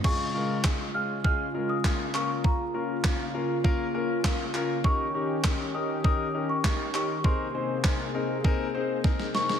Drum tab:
CC |x---------------|----------------|----------------|----------------|
CP |----x-------x-x-|----x-------x-x-|----x-------x-x-|----x-----------|
SD |----o-------o---|----o-------o---|----o-------o---|----o-------oooo|
BD |o---o---o---o---|o---o---o---o---|o---o---o---o---|o---o---o---o---|